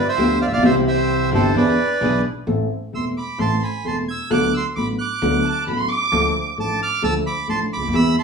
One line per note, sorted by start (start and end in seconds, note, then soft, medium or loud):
0.08 0.39 C5 medium
0.08 0.39 E5 loud
0.17 0.37 D2 loud
0.17 0.37 D2 medium
0.17 0.37 D3 medium
0.17 0.37 F3 medium
0.17 0.37 B3 medium
0.17 0.37 D4 medium
0.17 0.37 F4 medium
0.17 0.37 G4 medium
0.42 0.47 D5 medium
0.42 0.46 F5 loud
0.46 0.51 A1 medium
0.46 0.52 A1 medium
0.46 0.52 E5 medium
0.52 0.58 A#1 medium
0.52 0.57 A#1 medium
0.52 0.63 D5 medium
0.52 0.63 F5 loud
0.57 0.63 B1 medium
0.57 1.27 E3 medium
0.62 1.28 C2 loud
0.62 1.28 C3 loud
0.62 1.28 G3 medium
0.62 1.28 C4 medium
0.62 1.29 C4 medium
0.62 1.28 E4 medium
0.62 1.28 G4 medium
0.62 1.29 G4 medium
0.62 0.75 C5 medium
0.62 0.75 E5 loud
0.88 1.30 C5 medium
0.88 1.30 E5 loud
1.31 1.51 G1 loud
1.31 1.52 G1 medium
1.31 1.52 G2 medium
1.31 1.51 E3 medium
1.31 1.52 G3 medium
1.31 1.51 C4 medium
1.31 1.52 C4 medium
1.31 1.51 E4 medium
1.31 1.51 G4 medium
1.31 1.52 G4 medium
1.31 1.57 C5 medium
1.35 1.55 A4 medium
1.54 1.74 E2 loud
1.54 1.74 E2 medium
1.54 1.74 E3 medium
1.54 1.74 B3 medium
1.54 1.74 D4 medium
1.54 1.74 E4 medium
1.54 1.74 G#4 medium
1.54 2.21 B4 medium
1.54 2.21 D5 medium
2.00 2.21 B1 loud
2.00 2.21 B1 medium
2.00 2.21 B2 medium
2.00 2.20 E3 medium
2.00 2.21 B3 medium
2.00 2.20 D4 medium
2.00 2.21 D4 medium
2.00 2.20 E4 medium
2.00 2.20 G#4 medium
2.00 2.21 G#4 medium
2.47 2.66 A1 loud
2.47 2.67 A1 medium
2.47 2.67 A2 medium
2.47 2.66 E3 medium
2.47 2.67 A3 medium
2.47 2.67 C4 medium
2.47 2.67 A4 medium
2.93 3.12 E1 medium
2.93 3.13 E1 medium
2.93 3.12 E2 soft
2.93 3.12 E3 soft
2.93 3.12 A3 soft
2.93 3.12 C4 soft
2.93 3.13 A4 soft
2.93 3.05 C6 medium
2.93 3.05 E6 medium
3.17 3.39 B5 medium
3.17 3.38 D6 medium
3.38 3.58 A1 medium
3.38 3.58 A2 medium
3.38 3.58 E3 medium
3.38 3.58 A3 medium
3.38 3.58 C4 medium
3.38 3.58 A4 medium
3.38 3.62 A5 medium
3.38 3.63 C6 loud
3.63 3.85 G#5 medium
3.63 3.86 B5 medium
3.84 4.04 E1 medium
3.84 4.04 E2 medium
3.84 4.04 E3 soft
3.84 4.04 A3 soft
3.84 4.04 C4 soft
3.84 4.04 A4 soft
3.84 3.97 A5 medium
3.84 3.96 C6 medium
4.08 4.31 E6 medium
4.08 4.30 G#6 loud
4.30 4.50 D2 medium
4.30 4.50 D2 loud
4.30 4.50 D3 medium
4.30 4.50 F#3 medium
4.30 4.50 B3 medium
4.30 4.50 D4 medium
4.30 4.50 A4 medium
4.30 4.54 D6 loud
4.30 4.52 F#6 loud
4.54 4.66 C6 medium
4.54 4.64 E6 loud
4.76 4.96 A1 medium
4.76 4.96 A2 medium
4.76 4.95 F#3 soft
4.76 4.95 B3 soft
4.76 4.96 D4 soft
4.76 4.96 A4 medium
4.76 4.88 B5 medium
4.76 4.86 D6 medium
4.99 5.64 D6 medium
4.99 5.63 F#6 loud
5.22 5.41 D2 loud
5.22 5.41 D2 medium
5.22 5.41 D3 medium
5.22 5.41 F#3 medium
5.22 5.41 B3 medium
5.22 5.41 D4 medium
5.22 5.41 A4 medium
5.44 5.65 A5 medium
5.66 5.86 A1 medium
5.66 5.86 A2 medium
5.66 5.86 F#3 medium
5.66 5.86 B3 soft
5.66 5.86 D4 soft
5.66 5.87 A4 medium
5.66 5.78 B5 medium
5.78 5.90 C6 loud
5.89 6.46 D6 loud
6.12 6.31 D2 loud
6.12 6.32 D2 loud
6.12 6.32 D3 medium
6.12 6.32 F3 medium
6.12 6.32 A3 medium
6.12 6.32 D4 medium
6.12 6.32 A4 loud
6.57 6.77 A1 medium
6.57 6.77 A2 medium
6.57 6.77 F3 medium
6.57 6.77 A3 soft
6.57 6.77 D4 soft
6.57 6.77 A4 medium
6.57 6.80 A5 medium
6.57 6.80 D6 loud
6.82 7.03 D6 medium
6.82 7.03 F6 loud
7.02 7.22 D2 medium
7.02 7.22 D2 loud
7.02 7.22 D3 medium
7.02 7.22 F3 medium
7.02 7.22 A3 medium
7.02 7.22 D4 medium
7.02 7.22 A4 medium
7.02 7.14 A5 medium
7.02 7.14 E6 loud
7.27 7.47 B5 medium
7.27 7.48 D6 medium
7.47 7.67 A1 medium
7.47 7.68 A1 medium
7.47 7.67 A2 medium
7.47 7.67 F3 soft
7.47 7.67 A3 soft
7.47 7.67 D4 soft
7.47 7.67 A4 medium
7.47 7.60 A5 medium
7.47 7.59 C6 loud
7.73 7.81 C#2 medium
7.73 7.83 C#2 medium
7.73 7.93 B5 medium
7.73 7.96 D6 loud
7.82 7.87 D2 medium
7.82 7.88 D2 medium
7.88 7.93 D#2 medium
7.88 7.94 D#2 medium
7.93 8.13 E2 loud
7.93 8.13 E2 medium
7.93 8.13 E3 loud
7.93 8.13 G#3 medium
7.93 8.13 B3 medium
7.93 8.13 G#4 medium
7.93 8.16 B5 medium
7.93 8.16 E6 loud
8.19 8.23 A5 medium
8.19 8.23 C6 medium